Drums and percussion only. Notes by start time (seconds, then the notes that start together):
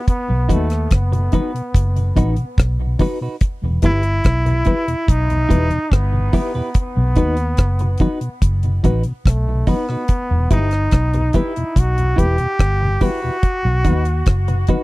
0.08 kick, closed hi-hat
0.49 kick, closed hi-hat
0.70 cross-stick, closed hi-hat
0.91 kick, cross-stick, closed hi-hat
1.13 closed hi-hat
1.32 kick, closed hi-hat
1.56 closed hi-hat
1.74 kick, closed hi-hat
1.96 closed hi-hat
2.16 kick, closed hi-hat
2.36 closed hi-hat
2.58 kick, cross-stick, closed hi-hat
2.99 kick, open hi-hat
3.41 kick, closed hi-hat
3.82 kick, closed hi-hat
4.03 closed hi-hat
4.24 kick, cross-stick, closed hi-hat
4.46 closed hi-hat
4.65 kick, closed hi-hat
4.88 closed hi-hat
5.08 kick, closed hi-hat
5.30 closed hi-hat
5.50 kick, closed hi-hat
5.71 closed hi-hat
5.92 kick, cross-stick, closed hi-hat
6.33 kick, open hi-hat
6.74 kick, closed hi-hat
7.16 kick, closed hi-hat
7.37 closed hi-hat
7.57 kick, cross-stick, closed hi-hat
7.79 closed hi-hat
7.98 kick, closed hi-hat
8.21 closed hi-hat
8.42 kick, closed hi-hat
8.63 closed hi-hat
8.84 kick, closed hi-hat
9.03 closed hi-hat
9.26 kick, cross-stick, closed hi-hat
9.67 kick, open hi-hat
9.89 cross-stick
10.08 kick, closed hi-hat
10.51 kick, closed hi-hat
10.71 cross-stick, closed hi-hat
10.91 kick, cross-stick, closed hi-hat
11.13 closed hi-hat
11.33 kick, closed hi-hat
11.56 closed hi-hat
11.76 kick, closed hi-hat
11.98 closed hi-hat
12.18 kick, closed hi-hat
12.38 closed hi-hat
12.59 kick, cross-stick, closed hi-hat
13.01 kick, open hi-hat
13.43 kick, closed hi-hat
13.85 kick, closed hi-hat
14.05 closed hi-hat
14.26 kick, cross-stick, closed hi-hat
14.48 closed hi-hat
14.67 kick, closed hi-hat